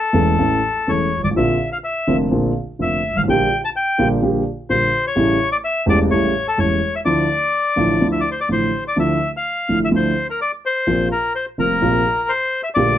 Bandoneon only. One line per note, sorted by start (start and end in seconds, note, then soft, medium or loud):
0.00 0.91 A4 medium
0.89 1.22 C#5 medium
1.24 1.29 D5 medium
1.37 1.70 E5 medium
1.72 1.78 F5 medium
1.84 2.17 E5 medium
2.82 3.17 E5 medium
3.17 3.22 F5 medium
3.30 3.61 G5 medium
3.65 3.69 A5 medium
3.76 4.08 G5 medium
4.70 5.06 C5 medium
5.07 5.49 C#5 medium
5.52 5.57 D5 medium
5.64 5.86 E5 medium
5.89 5.99 D5 medium
6.11 6.47 C#5 medium
6.48 6.59 A4 medium
6.59 6.95 C#5 medium
6.96 7.00 E5 medium
7.05 8.07 D5 medium
8.12 8.21 E5 medium
8.21 8.30 D5 medium
8.32 8.40 C5 medium
8.41 8.49 D5 medium
8.52 8.84 C5 medium
8.88 8.97 D5 medium
9.00 9.31 E5 medium
9.37 9.79 F5 medium
9.85 9.89 E5 medium
9.96 10.27 C5 medium
10.30 10.40 A#4 medium
10.41 10.52 D5 medium
10.66 11.08 C5 medium
11.12 11.33 A#4 medium
11.35 11.46 C5 medium
11.60 12.31 A#4 medium
12.29 12.62 C5 medium
12.63 12.69 E5 medium
12.75 12.98 D5 medium